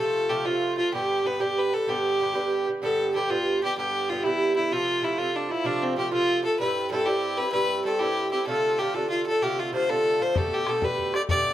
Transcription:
Already playing: bouzouki C3 F3, fiddle A4
0.00 bouzouki A3 F4
0.29 bouzouki C3 F3 A3 F4, fiddle G4
0.45 bouzouki C3 F3 A3 F4, fiddle F4
0.77 bouzouki F3 A3 F4, fiddle F4
0.93 bouzouki G2 D3 B3 G4, fiddle G4
1.24 bouzouki G2 D3 B3 G4, fiddle B4
1.40 bouzouki G2 D3 B3 G4, fiddle G4
1.58 fiddle B4
1.73 bouzouki D3 B3 G4, fiddle A4
1.87 bouzouki G2 D3 B3 G4, fiddle G4
2.20 bouzouki G2 D3 B3 G4
2.34 bouzouki G2 D3 B3 G4
2.66 bouzouki D3 B3 G4
2.82 bouzouki G2 D3 B3 G4, fiddle A4
3.15 bouzouki G2 D3 B3 G4, fiddle G4
3.30 bouzouki G2 D3 B3 G4, fiddle F4
3.62 bouzouki D3 B3 G4, fiddle G4
3.78 bouzouki G2 D3 B3 G4, fiddle G4
4.09 bouzouki G2 D3 B3 G4, fiddle F4
4.24 bouzouki G2 D3 B3 G4, fiddle E4
4.56 bouzouki D3 B3 G4, fiddle E4
4.72 bouzouki C3 F3 A3 F4, fiddle F4
5.02 bouzouki C3 F3 A3 F4, fiddle E4
5.18 bouzouki C3 F3 A3 F4, fiddle F4
5.36 fiddle D4
5.49 bouzouki F3 A3 F4, fiddle E4
5.64 bouzouki C3 F3 A3 F4, fiddle D4
5.83 fiddle C4
5.96 bouzouki C3 F3 A3 F4, fiddle G4
6.11 bouzouki C3 F3 A3 F4, fiddle F4
6.43 bouzouki F3 A3 F4, fiddle A4
6.59 bouzouki G2 G3 C4 E4, fiddle B4
6.90 bouzouki G2 G3 C4 E4, fiddle A4
7.06 bouzouki G2 G3 C4 E4, fiddle G4
7.38 bouzouki G3 C4 E4, fiddle B4
7.52 bouzouki G2 G3 C4 E4, fiddle B4
7.84 bouzouki G2 G3 C4 E4, fiddle A4
7.99 bouzouki G2 G3 C4 E4, fiddle G4
8.31 bouzouki G3 C4 E4, fiddle G4
8.46 bouzouki C3 D3 A3 F4, fiddle A4
8.79 bouzouki C3 D3 A3 F4, fiddle G4
8.94 bouzouki C3 D3 A3 F4, fiddle A4
9.10 fiddle F4
9.26 bouzouki D3 A3 F4, fiddle A4
9.42 bouzouki C3 D3 A3 F4, fiddle G4
9.59 fiddle F4
9.73 bouzouki C3 D3 A3 F4, fiddle C5
9.89 bouzouki C3 D3 A3 F4, fiddle A4
10.20 bouzouki D3 A3 F4, fiddle C5
10.34 bouzouki B2 D3 A3 G4, fiddle A4, bodhran
10.52 fiddle G4, bodhran
10.66 bouzouki B2 D3 A3 G4, fiddle A4, bodhran
10.82 bouzouki B2 D3 A3 G4, fiddle B4, bodhran
10.99 bodhran
11.13 bouzouki D3 A3 G4, fiddle D5, bodhran
11.29 bouzouki B2 D3 A3 G4, fiddle D5, bodhran
11.46 bodhran

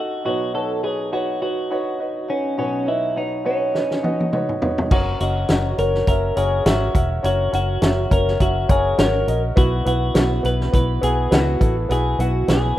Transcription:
Already playing: grand piano D#4 F#4 A4 D#5 F#5, clean electric guitar F#4
0.24 grand piano B1 B2 D#4 F#4 B4 C#5, clean electric guitar F#4
0.54 grand piano D#4 F#4 B4 C#5, clean electric guitar A4
0.83 grand piano D#4 F#4 B4 C#5, clean electric guitar G#4
1.12 grand piano D#4 F#4 B4 C#5, clean electric guitar F#4
1.41 grand piano D#4 F#4 B4 C#5, clean electric guitar F#4
1.70 grand piano D#4 F#4 B4 C#5
1.99 grand piano D#4 F#4 B4 D#5
2.28 clean electric guitar C#4, grand piano D#4 F#4 B4 D#5
2.57 grand piano B1 B2 D#4 F#4 B4 C#5, clean electric guitar C#4
2.86 grand piano D#4 F#4 B4 D#5, clean electric guitar E4
3.15 grand piano D#4 F#4 B4 C#5, clean electric guitar D#4
3.44 clean electric guitar C#4, grand piano D#4 F#4 B4 C#5
3.74 grand piano D#4 F#4 B4 D#5, snare
3.91 snare
4.03 grand piano D#4 F#4 B4 D#5, high tom
4.20 high tom
4.32 grand piano D#4 F#4 B4 C#5, mid tom
4.49 mid tom
4.61 grand piano D#4 F#4 B4 C#5, floor tom
4.78 floor tom
4.90 fingered electric bass F#1, grand piano C#4 F#4 A#4 C#5, clean electric guitar F#4, kick, crash
5.20 fingered electric bass F#1, grand piano C#4 F#4 A#4 D#5, clean electric guitar F#4, closed hi-hat
5.48 fingered electric bass F#1, grand piano C#4 F#4 A#4 D#5, snare, closed hi-hat
5.78 fingered electric bass F#1, grand piano C#4 F#4 A#4 C#5, clean electric guitar A#4, closed hi-hat
5.95 snare
6.07 fingered electric bass F#1, grand piano C#4 F#4 A#4 E5, clean electric guitar A#4, kick, closed hi-hat
6.36 fingered electric bass F#1, grand piano C#4 F#4 A#4 C#5, clean electric guitar G#4, closed hi-hat
6.65 fingered electric bass G#1, grand piano C#4 F#4 A#4 E5, clean electric guitar F#4, snare, closed hi-hat
6.94 fingered electric bass E1, grand piano C#4 F#4 A#4 E5, kick, closed hi-hat
7.23 fingered electric bass F#1, grand piano C#4 F#4 A#4 C#5, clean electric guitar F#4, closed hi-hat
7.52 fingered electric bass F#1, grand piano C#4 F#4 A#4 C#5, clean electric guitar F#4, closed hi-hat
7.81 fingered electric bass F#1, grand piano C#4 F#4 A#4 E5, snare, closed hi-hat
8.10 fingered electric bass F#1, grand piano C#4 F#4 A#4 C#5, clean electric guitar A#4, kick, closed hi-hat
8.28 snare
8.39 fingered electric bass F#1, grand piano C#4 F#4 A#4 E5, clean electric guitar F#4, kick, closed hi-hat
8.68 fingered electric bass F#1, grand piano C#4 F#4 A#4 C#5, clean electric guitar G#4, kick, closed hi-hat
8.98 fingered electric bass G#1, grand piano C#4 F#4 A#4 C#5, clean electric guitar A#4, snare, closed hi-hat
9.27 fingered electric bass A#1, grand piano C#4 F#4 A#4 D#5, closed hi-hat
9.56 fingered electric bass B1, grand piano B2 B3 E4 F#4 B4, clean electric guitar F#4, kick, closed hi-hat
9.85 fingered electric bass B1, grand piano B3 E4 F#4 B4, clean electric guitar F#4, closed hi-hat
10.14 fingered electric bass B1, grand piano B3 E4 F#4 B4, snare, closed hi-hat
10.43 fingered electric bass B1, grand piano B3 E4 F#4 B4, clean electric guitar B4, closed hi-hat
10.61 snare
10.72 fingered electric bass B1, grand piano B3 E4 F#4 B4, clean electric guitar B4, kick, closed hi-hat
11.01 fingered electric bass B1, grand piano B3 E4 F#4 G#4, clean electric guitar G#4, closed hi-hat
11.31 fingered electric bass C#2, grand piano B3 E4 F#4 B4, clean electric guitar F#4, snare, closed hi-hat
11.60 fingered electric bass A1, grand piano B3 E4 F#4 A4, kick, closed hi-hat
11.89 fingered electric bass B1, grand piano B2 B3 E4 F#4 B4, clean electric guitar G#4, closed hi-hat
12.19 fingered electric bass B1, grand piano B3 E4 F#4 B4, clean electric guitar F#4, closed hi-hat
12.48 fingered electric bass B1, grand piano B3 E4 F#4 B4, clean electric guitar G#4, snare, closed hi-hat

